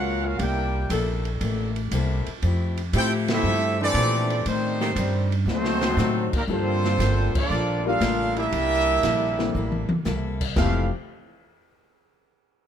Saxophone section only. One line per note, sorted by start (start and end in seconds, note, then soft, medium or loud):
0.90 1.69 E3 loud
0.90 1.69 A#3 medium
0.90 1.69 D4 medium
0.90 1.69 A4 loud
2.93 3.72 F3 loud
2.93 3.72 A3 loud
2.93 3.72 E4 loud
2.93 3.73 G4 loud
4.80 4.91 D#3 loud
4.80 4.92 A3 medium
4.80 4.91 C4 loud
4.80 4.91 G4 loud
5.81 6.45 D3 medium
5.81 6.45 D#3 loud
5.81 6.45 C4 loud
5.81 6.45 F#4 loud